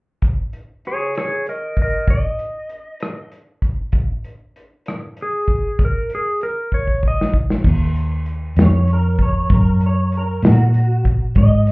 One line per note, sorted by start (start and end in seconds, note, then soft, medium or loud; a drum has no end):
0.22 kick medium
0.22 closed hi-hat soft
0.53 closed hi-hat soft
0.85 1.17 G#4 medium
0.85 1.16 C#5 medium
0.85 closed hi-hat soft
1.15 1.46 G#4 soft
1.15 1.47 C#5 medium
1.15 cross-stick medium
1.15 closed hi-hat medium
1.46 1.77 A#4 soft
1.46 1.78 D#5 soft
1.46 closed hi-hat soft
1.77 kick soft
1.77 closed hi-hat soft
1.82 2.09 A#4 soft
1.82 2.09 D#5 medium
2.08 3.29 D#5 medium
2.08 kick medium
2.08 closed hi-hat medium
2.39 closed hi-hat soft
2.69 closed hi-hat soft
3.00 cross-stick medium
3.00 closed hi-hat medium
3.32 closed hi-hat soft
3.62 kick soft
3.62 closed hi-hat soft
3.92 kick medium
3.92 closed hi-hat soft
4.24 closed hi-hat soft
4.56 closed hi-hat soft
4.86 cross-stick medium
4.86 closed hi-hat medium
5.17 closed hi-hat soft
5.22 5.80 G#4 medium
5.48 kick soft
5.48 closed hi-hat soft
5.79 kick medium
5.79 closed hi-hat medium
5.85 6.12 A#4 medium
6.10 closed hi-hat soft
6.15 6.43 G#4 medium
6.41 6.72 A#4 medium
6.41 closed hi-hat soft
6.72 7.03 C#5 medium
6.72 kick soft
6.87 kick soft
7.03 kick medium
7.08 7.36 D#5 medium
7.21 snare soft
7.34 kick medium
7.50 snare medium
7.64 8.55 D#2 medium
7.64 kick medium
7.64 crash medium
7.95 closed hi-hat medium
8.26 closed hi-hat soft
8.56 9.47 F2 medium
8.56 snare medium
8.56 closed hi-hat medium
8.62 8.90 C#5 medium
8.87 closed hi-hat soft
8.93 9.21 A#4 medium
9.18 kick medium
9.18 closed hi-hat soft
9.22 9.51 C#5 medium
9.49 10.40 F#2 medium
9.49 kick medium
9.49 closed hi-hat medium
9.54 9.82 A#4 medium
9.81 closed hi-hat soft
9.86 10.14 C#5 medium
10.12 closed hi-hat soft
10.17 10.45 A#4 medium
10.42 11.33 A#2 medium
10.42 snare medium
10.42 closed hi-hat medium
10.47 11.05 F#4 medium
10.74 closed hi-hat medium
11.05 kick medium
11.05 closed hi-hat medium
11.35 11.72 G#2 medium
11.35 11.72 D#5 medium
11.35 kick medium
11.35 closed hi-hat medium
11.67 closed hi-hat medium